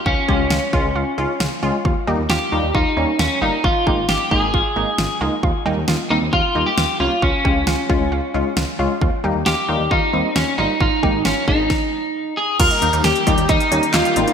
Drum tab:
CC |----------------|----------------|----------------|----------------|
HH |----------------|----------------|----------------|----------------|
CP |----------------|----------------|----------------|----------------|
SD |----o-------o---|----o-------o---|----o-------o---|----o-------o---|
BD |o-o---o---------|o-------o-------|o-o---o-o-------|o-------o-------|

CC |----------------|----------------|----------------|x---------------|
HH |----------------|----------------|----------------|xxxxxxxxxxxxxxxx|
CP |----------------|----------------|----------------|------------x---|
SD |----o-------o---|----o-------o---|----o---o-------|----o-------o---|
BD |o-o---o---------|o-------o-------|o-o---o-o-------|o-----o-o-------|